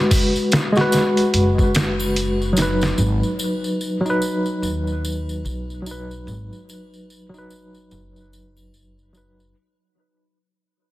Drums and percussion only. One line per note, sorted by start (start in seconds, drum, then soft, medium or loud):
0.11 kick medium
0.11 open hi-hat medium
0.11 tambourine medium
0.11 triangle medium
0.36 tambourine soft
0.52 snare loud
0.52 closed hi-hat medium
0.52 tambourine medium
0.76 snare soft
0.76 tambourine soft
0.92 snare soft
0.92 closed hi-hat medium
0.92 tambourine medium
1.17 closed hi-hat soft
1.17 tambourine soft
1.34 closed hi-hat medium
1.34 tambourine soft
1.58 kick medium
1.58 tambourine soft
1.75 snare loud
1.75 closed hi-hat medium
1.75 tambourine medium
2.00 tambourine soft
2.00 triangle medium
2.16 closed hi-hat medium
2.16 tambourine soft
2.42 tambourine soft
2.57 snare soft
2.57 closed hi-hat medium
2.57 tambourine medium
2.81 snare soft
2.81 tambourine soft
2.98 tambourine medium
3.23 tambourine soft
3.39 tambourine medium
3.39 triangle medium
3.64 tambourine soft
3.81 tambourine soft
4.06 tambourine soft
4.22 tambourine medium
4.46 tambourine soft
4.63 tambourine medium
4.87 tambourine soft
5.05 tambourine medium
5.05 triangle medium
5.29 tambourine soft
5.45 tambourine soft
5.70 tambourine soft
5.86 tambourine medium
6.11 tambourine soft
6.28 tambourine soft
6.53 tambourine soft
6.69 tambourine medium
6.69 triangle soft
6.94 tambourine soft
7.10 tambourine soft
7.34 tambourine soft
7.50 tambourine medium
7.74 tambourine soft
7.91 tambourine soft
8.16 tambourine soft
8.33 tambourine medium
8.57 tambourine soft
8.57 triangle medium
8.74 tambourine medium
8.99 tambourine soft
9.14 tambourine medium
9.40 tambourine soft